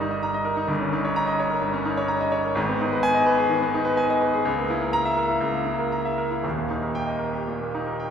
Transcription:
Already playing: G1 G2 G3 A#4 D#5 A#5
0.00 D#4
0.11 D#5
0.23 A#5
0.34 D#5
0.45 A#4
0.57 D#4
0.68 G1 G2
0.80 C#4
0.93 D#4
1.05 C#5
1.16 A#5
1.27 D#5
1.40 C#5
1.50 A#4
1.62 G2
1.74 C#4
1.85 D#4
1.97 C#5
2.08 A#5
2.21 D#5
2.32 C#5
2.44 A#4
2.55 G#1 G#2
2.69 B3
2.81 D#4
2.93 B4
3.03 G#5
3.14 D#5
3.26 B4
3.38 G#4
3.49 D#3
3.62 B3
3.74 D#4
3.85 B4
3.97 G#5
4.10 D#5
4.22 B4
4.34 G#4
4.45 C#2
4.58 A#3
4.70 E4
4.82 A#4
4.93 A#5
5.05 E5
5.17 A#4
5.29 E4
5.40 C#2
5.53 A#3
5.66 E4
5.79 A#4
5.92 A#5
6.05 E5
6.18 A#4
6.31 E4
6.43 D#1 D#2
6.58 A#3
6.70 D#4
6.83 A#4
6.95 G5
7.07 D#5
7.19 A#4
7.33 G4
7.48 A#2
7.61 A#3
7.74 D#4
7.87 A#4
8.00 G5

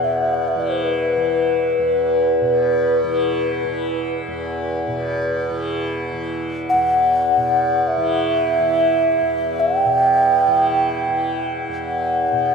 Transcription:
Already playing: E2 B2 E3
0.04 E5
0.22 E5
0.34 F#5
0.48 E5
0.55 E3
0.60 D5
0.70 C5
0.84 B4
1.17 E3
1.79 E2
2.41 B2
3.04 E3
3.64 E3
4.28 E2
4.87 B2
5.50 E3
6.13 E3
6.69 E2 F#5
7.37 B2
7.78 F#5
7.88 E5
7.97 E3
8.59 E3
9.22 E2
9.60 G5
9.85 B2
10.48 E3
11.08 E3
11.69 E2
11.86 F#5
12.32 B2

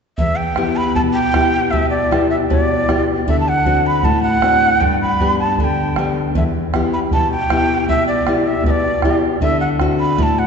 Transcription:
0.18 E2 E5, bombo low
0.37 G5
0.56 B3 E4 G4, bombo rim, bombo low
0.77 B5
0.95 B2 A5, bombo low
1.13 G5
1.34 B3 E4 G4, bombo rim, bombo low
1.71 B2 E5, bombo low
1.90 D5
2.11 B3 E4 G4, bombo rim, bombo low
2.30 E5
2.50 B2 D5, bombo low
2.88 B3 E4 G4, bombo rim, bombo low
3.28 D3 E5, bombo low
3.40 A5
3.49 F#5
3.65 C4 D4 F#4, bombo low
3.86 B5
4.03 A2 A5, bombo low
4.23 F#5
4.42 C4 D4 F#4, bombo rim, bombo low
4.81 G2 G5, bombo low
5.01 B5
5.19 B3 D4 G4, bombo low
5.40 A5
5.58 D3 A5, bombo low
5.64 G5
5.96 B3 D4 G4, bombo rim, bombo low
6.35 E2 E5, bombo low
6.74 B3 E4 G4, bombo rim, bombo low
6.93 B5
7.11 B2 A5, bombo low
7.32 G5
7.50 B3 E4 G4, bombo rim, bombo low
7.89 B2 E5, bombo low
8.08 D5
8.27 B3 E4 G4, bombo rim, bombo low
8.47 E5
8.64 B2 E5, bombo low
8.70 D5
9.02 B3 E4 G4, bombo rim, bombo low
9.41 D3 E5, bombo low
9.60 F#5
9.80 C4 D4 F#4, bombo rim, bombo low
10.00 B5
10.18 A2 B5, bombo low
10.23 A5
10.39 F#5

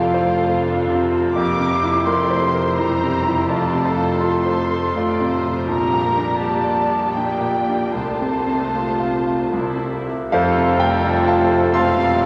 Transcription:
Already playing: F1 F2 C3 A3 F4 A4 D5 F5
0.14 C5
0.27 F4 C5
0.38 A4
0.61 D4 F4 A4
0.87 C3
0.98 C4
1.11 F4
1.33 F1 F2 A#3 G4 A#4 D6
1.60 C3
1.70 A#3 C5
1.83 E4
2.06 A3 G4 A#4 D5 C6
2.30 C5
2.42 C5
2.54 A#4
2.76 E1 E2 G3 E4 G4 A#5
3.03 C3
3.13 G3
3.26 E4
3.48 F1 F2 A3 F4 D5 A5
3.74 C3
3.85 A4 C5
3.96 F4
4.20 F4 A4 C6
4.46 C5
4.57 F4
4.71 A4
4.94 A1 A2 A3 F4 D5
5.21 C3
5.31 F3 C5
5.46 F4
5.67 A#1 A#2 G3 G4 A#4 A#5
5.93 A#2
6.17 D4
6.39 G3 G4 D5 A5
6.64 D5
6.90 G4
7.14 A#3 D4 G4 D5 G5
7.41 A#2
7.54 A#3
7.68 D4
7.92 C2 C3 A3 F4 C5 A5
8.21 C3
8.47 C4
8.74 F4
9.00 F5
9.26 F4
9.52 C2 C3 G3 E4
9.79 C4
10.06 G4 E5
10.30 F1 F2 C3 F3 F4 A4 C5 F5
10.57 C3
10.78 G3 A3 A#4 G5
11.02 A3 D4 F4
11.26 A3 C5 F5 A5
11.39 C4
11.51 F4
11.73 E1 E2 G3 A3 C4 A4 F5 A5 C6
11.98 C3
12.21 A3

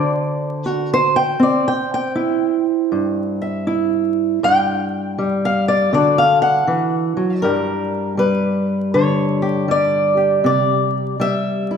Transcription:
Already playing: D3 F#4 C5 D5
0.66 F#4 A#4
0.94 C5
1.16 G5
1.40 C4 D5
1.68 G5
1.94 G5
2.15 E4
2.92 G2
3.42 E5
3.67 E4
4.43 G2 G5
5.18 G3
5.45 F5
5.68 D5
5.93 D3 F#4 A4 D5
6.18 F5
6.42 F#5
6.67 E3
7.17 F#3
7.42 G2 G3 G4 A#4
8.17 G3 B4
8.94 D3 C#5
9.42 G4
9.68 G3 D5
10.17 G4
10.44 C3 D5
11.20 G3 E5
11.71 E4

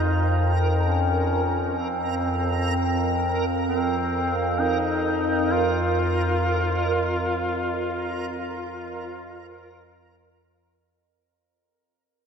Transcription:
Already playing: F2 D#4 A#4
0.86 C#4
1.78 C4
3.68 C4
4.60 D#4
5.52 F4

